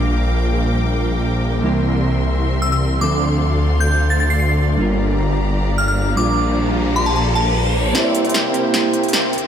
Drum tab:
HH |--------------------------------|--------------------------------|--------------------------------|--------------------------------|
SD |--------------------------------|--------------------------------|--------------------------------|--------------------------------|

HH |--------------------------------|x---x-xxx---x---x---x-xxx---xx--|
SD |--------------------------------|o-------o-------o-------o-------|